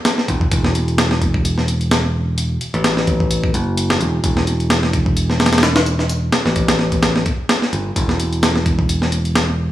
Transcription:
0.05 snare, closed hi-hat
0.18 snare
0.28 E1, kick, closed hi-hat
0.41 kick
0.52 E1, kick, closed hi-hat
0.64 snare
0.75 closed hi-hat
0.88 closed hi-hat
0.98 snare, closed hi-hat
1.11 snare
1.22 kick, closed hi-hat
1.34 kick
1.45 closed hi-hat
1.58 snare
1.68 closed hi-hat
1.81 closed hi-hat
1.91 snare, closed hi-hat
2.38 closed hi-hat
2.61 closed hi-hat
2.74 A1, closed hi-hat
2.84 snare, closed hi-hat
2.97 snare
3.07 kick, closed hi-hat
3.20 kick
3.31 closed hi-hat
3.44 kick
3.54 F#1, closed hi-hat
3.77 closed hi-hat
3.90 snare
4.00 E1, closed hi-hat
4.24 E1, kick, closed hi-hat
4.37 snare
4.47 closed hi-hat
4.60 closed hi-hat
4.70 snare, closed hi-hat
4.83 snare
4.93 kick, closed hi-hat
5.06 kick
5.17 closed hi-hat
5.30 snare
5.40 snare, closed hi-hat
5.46 snare, closed hi-hat
5.53 snare, closed hi-hat
5.58 snare, closed hi-hat
5.63 snare, closed hi-hat
5.76 snare, closed hi-hat
5.86 closed hi-hat
5.99 snare
6.09 closed hi-hat
6.32 snare, closed hi-hat
6.45 A1, snare
6.56 kick, closed hi-hat
6.68 snare, closed hi-hat
6.79 snare
6.92 kick, closed hi-hat
7.03 snare, closed hi-hat
7.16 snare
7.26 kick, closed hi-hat
7.49 snare, closed hi-hat
7.62 snare
7.73 G1, closed hi-hat
7.96 E1, kick, closed hi-hat
8.09 snare
8.20 closed hi-hat
8.33 closed hi-hat
8.43 snare, closed hi-hat
8.56 snare
8.66 kick, closed hi-hat
8.79 kick
8.89 closed hi-hat
9.02 snare
9.12 closed hi-hat
9.25 closed hi-hat
9.35 snare, closed hi-hat

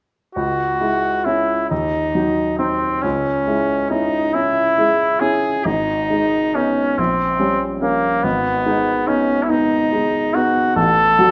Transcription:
0.35 C#2 F#4
0.81 G#3 E4
1.25 C#4 E4
1.70 D#2 D#4
2.15 F#3 D#4
2.59 C4 D#4
3.02 C#2 C#4
3.47 G#3 E4
3.90 C#4 D#4 E4
4.34 C#4 E4
4.78 G#3 E4
5.20 C#4 E4 G#4
5.65 G#1 D#4
6.10 G#3 D#4
6.55 B3 C#4 D#4
6.98 A#1 C4
7.39 G3 C#4
7.81 A#3 C#4
8.23 G#1 B3
8.66 G#3 D#4
9.07 B3 C#4 D#4
9.43 E4
9.50 B3 D#4
9.92 G#3 D#4
10.34 B3 D#4 F#4
10.76 A1 A4
11.19 F#3 F#4

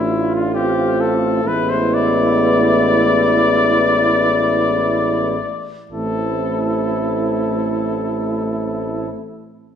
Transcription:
Already playing: A1 A3 D4 E4 F4
0.35 F4
0.55 C4 G4
1.01 A4
1.44 A1 G#3 B3 E4 B4
1.70 C5
1.94 D5
5.91 A1 A3 C4 E4 A4

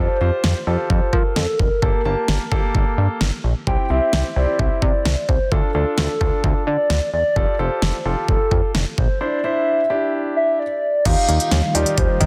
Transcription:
Already playing: F4 G4 A4 C5
0.21 F2 F4 G4 C5
0.44 F2, snare
0.67 F2 F4 G4 A4 C5
0.90 F2, kick
1.13 F3 A#4, kick
1.36 F2 A4, snare
1.59 F1 A#4, kick
1.82 G1 A#3 G4 A4, kick
2.05 G1 A#3 G4 A5
2.28 G1, snare
2.52 G1 A#3 G4 A4, kick
2.75 G1, kick
2.98 G2
3.21 G1, snare
3.44 A#1
3.67 C2 C4 E4 G4 G5, kick
3.90 C2 C4 E4 G4 E5
4.13 C2, snare
4.36 C2 C4 E4 G4 D5
4.59 C2 E5, kick
4.82 C3 D5, kick
5.05 C2, snare
5.29 C2 C5, kick
5.52 D2 D4 F4 A4, kick
5.75 D2 D4 F4 A4
5.98 D2 A4, snare
6.21 D2 D4 F4 A4, kick
6.44 D2, kick
6.67 D3 D5
6.90 D2, snare
7.13 E2 D5
7.36 F1 F4 G4 A4, kick
7.59 F1 F4 G4 A4 C5
7.82 F1, snare
8.05 F1 F4 G4 A4
8.28 F1 A4, kick
8.51 F2, kick
8.75 F1, snare
8.98 A#1 C5, kick
9.21 D4 E4 C5 D5
9.44 D4 E4 C5 E5
9.90 D4 E4 G4
10.36 E5
10.59 D5
11.05 D#2 D#3 G3 A#3 D#4 F4 G4 F5, kick, closed hi-hat, crash
11.29 D#2, closed hi-hat
11.40 F5, closed hi-hat
11.51 D#2, snare, closed hi-hat
11.75 D#2 D#4 F4 G4 D5, closed hi-hat
11.86 closed hi-hat
11.98 D#2 C5, kick, closed hi-hat
12.21 D#3, kick, closed hi-hat

